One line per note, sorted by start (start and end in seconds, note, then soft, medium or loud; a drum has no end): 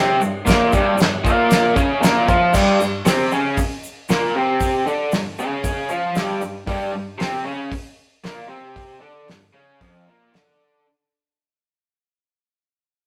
0.00 0.19 C3 medium
0.00 0.20 C4 loud
0.20 0.41 G2 medium
0.20 shaker medium
0.46 0.71 A#2 medium
0.46 0.72 A#3 loud
0.46 kick loud
0.46 snare loud
0.46 crash medium
0.46 shaker medium
0.72 0.96 G2 medium
0.72 0.98 G3 medium
0.72 kick loud
0.72 shaker medium
0.98 1.18 G2 medium
0.98 snare loud
0.98 crash medium
0.98 shaker medium
1.24 1.75 A#2 medium
1.24 1.75 A#3 loud
1.24 kick loud
1.24 shaker medium
1.50 snare loud
1.50 crash medium
1.50 shaker medium
1.76 2.00 C#3 loud
1.76 2.01 C#4 loud
1.76 kick loud
1.76 shaker medium
2.01 2.26 A#2 medium
2.01 2.27 A#3 loud
2.01 snare loud
2.01 crash medium
2.01 shaker loud
2.28 2.52 F3 medium
2.28 2.53 F4 medium
2.28 kick loud
2.28 shaker medium
2.53 2.78 G2 loud
2.53 2.78 G3 loud
2.53 kick loud
2.53 crash loud
2.53 shaker medium
2.80 3.00 G2 medium
2.80 shaker medium
3.05 3.30 C3 medium
3.05 3.30 C4 loud
3.05 snare loud
3.05 open hi-hat medium
3.05 shaker medium
3.31 3.56 C#3 medium
3.31 3.57 C#4 medium
3.31 shaker medium
3.57 muted overdriven electric guitar stroke medium
3.57 kick loud
3.57 open hi-hat medium
3.57 shaker medium
3.83 shaker medium
4.09 4.34 A#2 medium
4.09 4.34 A#3 loud
4.09 snare loud
4.09 open hi-hat medium
4.09 shaker medium
4.35 4.85 C3 medium
4.35 4.86 C4 loud
4.60 kick loud
4.60 open hi-hat medium
4.60 shaker medium
4.86 5.11 D3 medium
4.86 5.12 D4 medium
4.86 shaker medium
5.12 5.33 G2 medium
5.12 snare loud
5.12 open hi-hat medium
5.12 shaker medium
5.38 5.89 C#3 medium
5.38 5.90 C#4 medium
5.38 shaker medium
5.64 kick loud
5.64 open hi-hat medium
5.64 shaker medium
5.89 6.15 F3 loud
5.89 6.15 F4 loud
5.89 shaker medium
6.15 6.41 G2 medium
6.15 6.41 G3 loud
6.15 snare loud
6.15 open hi-hat medium
6.15 shaker medium
6.41 6.62 G2 medium
6.41 shaker medium
6.66 6.91 G2 medium
6.66 6.93 G3 loud
6.66 kick loud
6.66 open hi-hat medium
6.92 7.14 G2 medium
7.18 7.44 C3 medium
7.18 7.45 C4 loud
7.18 snare loud
7.18 open hi-hat medium
7.45 7.70 C#3 medium
7.45 7.71 C#4 medium
7.70 muted overdriven electric guitar stroke medium
7.70 kick loud
7.70 open hi-hat medium
8.24 8.48 A#2 medium
8.24 8.49 A#3 loud
8.24 snare loud
8.24 open hi-hat medium
8.48 9.00 C3 medium
8.48 9.01 C4 loud
8.76 kick loud
8.76 open hi-hat medium
9.00 9.27 D3 medium
9.00 9.27 D4 loud
9.28 9.49 G2 medium
9.28 snare loud
9.28 open hi-hat medium
9.53 9.79 C#3 medium
9.53 9.80 C#4 loud
9.80 10.06 F2 medium
9.80 10.07 F3 loud
9.80 kick loud
9.80 open hi-hat medium
10.06 10.32 A#2 medium
10.06 10.33 A#3 medium
10.33 10.85 D3 medium
10.33 10.85 D4 medium
10.33 snare loud
10.33 open hi-hat medium